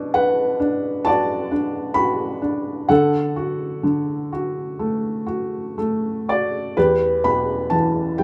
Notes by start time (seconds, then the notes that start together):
Already playing: B2 D4
0.14 B4 F#5
0.60 D4
1.05 F#4 D5 A5
1.51 D4
1.94 F#4 B5
2.42 D4
2.89 D3 A4 F#5
3.36 F#4
3.83 D3
4.32 F#4
4.79 A3
5.26 F#4
5.78 A3
6.28 F#4 D5
6.77 E2 G4 B4
7.24 B2 B5
7.70 E3 A5
8.18 G3 G5